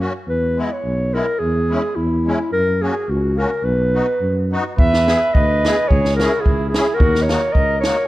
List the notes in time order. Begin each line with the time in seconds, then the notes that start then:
0.00 A#3 C#4 F#4
0.27 E2 B4
0.57 G#3 B3 E4
0.61 D#5
0.72 C#5
0.84 B1
1.13 G#3 B3 E4 A#4
1.39 E2 G#4
1.69 G#3 C#4 E4
1.95 E2 E4
2.26 G#3 C#4 E4
2.52 F#2 A#4
2.81 A#3 C#4 F#4 G#4
3.08 C#2 F#4
3.37 A#3 C#4 F#4 A#4
3.63 B1 B4
3.94 B3 D#4 F#4
4.20 F#2
4.52 B3 D#4 F#4
4.77 E2 B4 E5, kick
4.94 snare
5.07 B3 E4 G#4, snare
5.33 D2 B4 D#5, kick
5.64 B3 E4 G#4, snare
5.88 C#2 G#4 C#5, kick
6.05 snare
6.16 F#4 A#4
6.20 C#4 E4 G#4, snare
6.40 E4 G#4
6.45 C#2, kick
6.68 E4 G#4
6.74 C#4 E4 G#4, snare
6.94 F#4 A#4
7.00 D#2, kick
7.15 snare
7.21 A#4 B4 C#5 D#5
7.28 A#3 D#4 F#4, snare
7.48 A#4
7.52 C#2 D#5, kick
7.78 A#4 C#5
7.84 A#3 D#4 F#4, snare